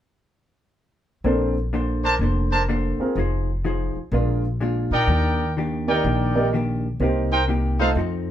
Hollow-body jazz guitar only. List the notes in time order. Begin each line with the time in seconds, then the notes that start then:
1.25 A#3 D4 A4 C5
1.73 A#3 D4 A4 C5
2.21 A#3 D4 A4 C5
2.69 A#3 D4 A4 C5
3.17 F3 D#4 G#4 C5
3.64 F3 D#4 G#4 C5
4.12 A#2 G#3 D4 F4
4.60 A#2 G#3 D4 F4
5.09 D#3 A#3 D4 G4
5.57 D#3 A#3 D4 G4
6.04 D#3 A#3 D4 G4
6.53 D#3 A#3 D4 G4
7.01 C3 A#3 D#4 G4
7.48 C3 A#3 D#4 G4
7.96 F3 C4 D#4 A4